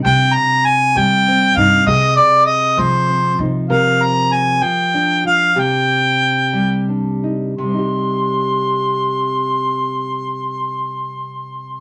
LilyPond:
<<
  \new Staff \with { instrumentName = "Harmonica" } { \time 6/8 \key c \minor \tempo 4. = 63 g''8 bes''8 aes''8 g''4 f''8 | ees''8 d''8 ees''8 c''4 r8 | f''8 bes''8 aes''8 g''4 f''8 | g''2 r4 |
c'''2.~ | c'''2. | }
  \new Staff \with { instrumentName = "Nylon-string guitar" } { \time 6/8 \key c \minor << { r2 c'8 ees'8 | aes'2 c'8 ees'8 | bes'2 d'8 f'8 | g'2 d'8 ees'8 |
<g c' ees' g'>2.~ | <g c' ees' g'>2. | } \\ { c4. g4. | c4. f4. | c4. f4. | c4. g4. |
c2.~ | c2. | } >> }
  \new Staff \with { instrumentName = "Upright bass" } { \clef bass \time 6/8 \key c \minor c8 r4 c4 g,8 | c8 r4 c4 c8 | r2. | r2. |
r2. | r2. | }
>>